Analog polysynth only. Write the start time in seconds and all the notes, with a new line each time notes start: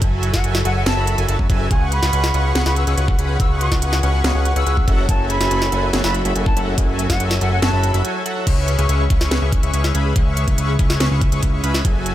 0.02 F#3 F#4 A4 E5 G#5
0.34 F#3 F#4 A4 E5 G#5
0.44 F#3 F#4 A4 E5 G#5
0.65 F#3 F#4 A4 E5 G#5
0.86 F#3 F#4 A4 E5 G#5
0.97 F#3 F#4 A4 E5 B5
1.18 F#3 F#4 A4 E5 G#5
1.28 F#3 F#4 A4 E5 A5
1.39 F#3 F#4 G#5
1.50 F#3 F#4 A4 E5 G#5
1.71 C#4 G#4 B4 F#5 C#6
2.03 C#4 G#4 B4 F#5 C#6
2.13 C#4 G#4 B4 F#5 C#6
2.34 C#4 G#4 B4 F#5 C#6
2.55 C#4 G#4 B4 F#5 C#6
2.66 C#4 G#4 B4 F#5 C#6
2.87 C#4 G#4 B4 F#5 C#6
2.97 C#4 G#4 B4 F#5 C#6
3.19 C#4 G#4 B4 F#5 B5
3.40 C#4 G#4 B4 F#5 C#6
3.72 C#4 G#4 B4 F#5 C#6
3.82 C#4 G#4 B4 F#5 C#6
4.03 C#4 G#4 B4 F#5 C#6
4.24 C#4 G#4 B4 F#5 C#6
4.35 C#4 G#4 B4 F#5 C#6
4.56 C#4 G#4 B4 F#5 C#6
4.67 C#4 G#4 B4 F#5 C#6
4.88 F#3 F#4 A4 E5 F#5
5.09 F#3 F#4 A4 G#5
5.41 F#3 F#4 A4 E5 G#5
5.51 F#3 F#4 A4 E5 G#5
5.72 F#3 F#4 A4 E5 G#5
5.93 F#3 F#4 A4 E5 G#5
6.04 F#3 F#4 A4 E5 B5
6.25 F#3 F#4 A4 E5 B5
6.36 F#3 F#4 A4 E5 G#5
6.57 F#3 F#4 A4 E5 F#5
6.78 F#3 F#4 A4 G#5
7.10 F#3 F#4 A4 E5 G#5
7.20 F#3 F#4 A4 E5 G#5
7.41 F#3 F#4 A4 E5 G#5
7.62 F#3 F#4 A4 E5 G#5
7.73 F#3 F#4 A4 E5 B5
7.94 F#3 F#4 A4 E5 B5
8.05 F#3 F#4 A4 E5 G#5
8.26 F#3 F#4 A4 E5 F#5
8.47 C#4 G#4 B4 E5 C#6
8.79 C#4 G#4 B4 E5 C#6
8.89 C#4 G#4 B4 E5 C#6
9.10 C#4 G#4 B4 E5 C#6
9.31 C#4 G#4 B4 E5 C#6
9.42 C#4 G#4 B4 E5 C#6
9.63 C#4 G#4 B4 E5 C#6
9.74 C#4 G#4 B4 E5 C#6
9.95 C#4 G#4 B4 E5 B5
10.16 C#4 G#4 B4 E5 C#6
10.48 C#4 G#4 B4 E5 C#6
10.58 C#4 G#4 B4 E5 C#6
10.79 C#4 G#4 B4 E5 C#6
11.00 C#4 G#4 B4 E5 C#6
11.11 C#4 G#4 B4 E5 C#6
11.32 C#4 G#4 B4 E5 C#6
11.43 C#4 G#4 B4 E5
11.64 C#4 G#4 B4 E5 B5
11.85 F#3 F#4 A4 G#5